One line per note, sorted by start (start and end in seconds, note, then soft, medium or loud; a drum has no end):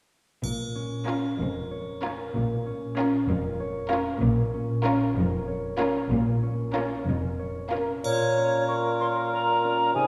0.43 1.21 A#1 soft
0.43 1.21 A#2 soft
0.43 2.34 A#2 soft
0.43 triangle soft
0.75 2.65 C#4 soft
1.07 1.31 C#4 soft
1.07 1.31 F4 soft
1.07 2.97 F4 soft
1.07 1.31 A#4 soft
1.39 2.16 F1 soft
1.39 2.16 F2 soft
1.39 2.02 A#4 soft
1.71 3.59 C#5 soft
2.02 2.26 C#4 soft
2.02 2.26 F4 soft
2.02 2.26 A#4 soft
2.02 3.28 A#4 soft
2.34 3.11 A#1 soft
2.34 3.11 A#2 medium
2.34 4.21 A#2 soft
2.66 4.52 C#4 soft
2.97 3.21 C#4 soft
2.97 3.20 F4 soft
2.97 4.83 F4 soft
2.97 3.20 A#4 soft
3.28 4.04 F1 medium
3.28 4.04 F2 medium
3.28 3.90 A#4 soft
3.60 5.46 C#5 soft
3.90 4.14 C#4 soft
3.90 4.14 F4 soft
3.90 4.14 A#4 medium
3.90 5.15 A#4 soft
4.22 4.98 A#1 medium
4.22 4.98 A#2 medium
4.22 6.09 A#2 soft
4.54 6.41 C#4 soft
4.84 5.08 C#4 medium
4.84 5.08 F4 soft
4.84 6.73 F4 soft
4.84 5.08 A#4 medium
5.16 5.92 F1 medium
5.16 5.92 F2 medium
5.16 5.78 A#4 soft
5.48 7.38 C#5 soft
5.78 6.02 C#4 soft
5.78 6.02 F4 soft
5.78 6.02 A#4 soft
5.78 7.05 A#4 soft
6.10 6.88 A#1 medium
6.10 8.04 A#2 soft
6.10 6.88 A#2 medium
6.43 8.36 C#4 soft
6.74 6.98 C#4 soft
6.74 6.98 F4 soft
6.74 9.97 F4 soft
6.74 6.98 A#4 soft
7.06 7.86 F1 medium
7.06 7.86 F2 medium
7.06 7.71 A#4 soft
7.39 9.00 C#5 soft
7.71 7.96 C#4 soft
7.71 7.96 F4 soft
7.71 7.96 A#4 soft
7.71 8.68 A#4 soft
8.04 9.90 A#2 soft
8.04 9.97 A#2 soft
8.04 9.91 F4 soft
8.04 9.90 A#4 soft
8.04 8.65 C#5 medium
8.04 triangle soft
8.37 9.63 C#4 soft
8.68 9.32 A#4 soft
8.68 8.75 C#6 medium
9.00 9.97 C#5 soft
9.00 9.07 C6 medium
9.33 9.94 A#5 medium
9.64 9.97 C#4 soft
9.94 10.07 C3 medium
9.94 10.07 C3 soft
9.94 10.07 D#4 medium
9.94 10.07 G#4 medium
9.94 10.07 G#5 medium